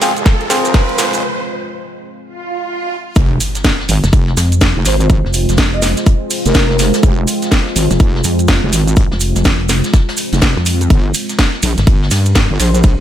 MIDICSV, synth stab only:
0, 0, Header, 1, 2, 480
1, 0, Start_track
1, 0, Key_signature, -4, "minor"
1, 0, Tempo, 483871
1, 1216, Time_signature, 4, 2, 24, 8
1, 12899, End_track
2, 0, Start_track
2, 0, Title_t, "Synth stab"
2, 0, Program_c, 0, 62
2, 16, Note_on_c, 0, 60, 100
2, 16, Note_on_c, 0, 65, 88
2, 16, Note_on_c, 0, 68, 85
2, 16, Note_on_c, 0, 72, 106
2, 124, Note_off_c, 0, 60, 0
2, 124, Note_off_c, 0, 65, 0
2, 124, Note_off_c, 0, 68, 0
2, 124, Note_off_c, 0, 72, 0
2, 496, Note_on_c, 0, 60, 85
2, 496, Note_on_c, 0, 65, 81
2, 496, Note_on_c, 0, 68, 83
2, 496, Note_on_c, 0, 72, 98
2, 1216, Note_off_c, 0, 60, 0
2, 1216, Note_off_c, 0, 65, 0
2, 1216, Note_off_c, 0, 68, 0
2, 1216, Note_off_c, 0, 72, 0
2, 12899, End_track
0, 0, End_of_file